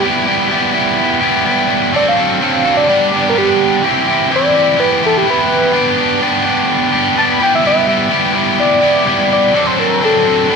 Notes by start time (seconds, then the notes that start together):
0.01 G3 B3 E4 G4
0.26 B3 E4 G4
0.49 G3 B3 E4 G4
0.73 B3 E4 G4
1.21 B3 E4 G4
1.44 G3 B3 E4 G4
1.92 F#3 C4 D4 A4 D5
2.08 F5
2.17 C4 D4 A4
2.41 F#3 C4 D4 A4
2.65 C4 D4 A4
2.77 D5
2.88 G3 B3 D4 G4 D5
3.12 B3 D4 G4 D5
3.30 A#4
3.34 G3 B3 D4 G4
3.38 G4
3.82 E3 C4 E4 G4
4.07 C4 E4 G4
4.30 E3 C4 E4 G4
4.36 D5
4.55 C4 E4 G4
4.78 E3 B3 E4 G4 B4
4.93 B4
5.03 B3 E4 G4 A4
5.17 G4
5.26 E3 B3 E4 G4
5.30 B4
5.72 B3 D4 G4
5.97 D4 G4
6.21 B3 D4 G4
6.44 D4 G4
6.92 D4 G4
7.16 B3 D4 G4 A5
7.31 B5
7.40 G3 B3 E4 G4 G5
7.55 E5
7.63 G3 B3 E4 G4 E5
7.87 B3 E4 G4
8.10 G3 B3 E4 G4
8.33 B3 E4 G4
8.60 D5
8.81 B3 E4 G4
9.05 G3 B3 E4 G4
9.33 D5
9.53 F#3 C4 D4 A4 D5
9.67 C5
9.77 C4 D4 A4 A#4
10.02 F#3 C4 D4 A4
10.26 C4 D4 A4
10.49 B3 D4 G4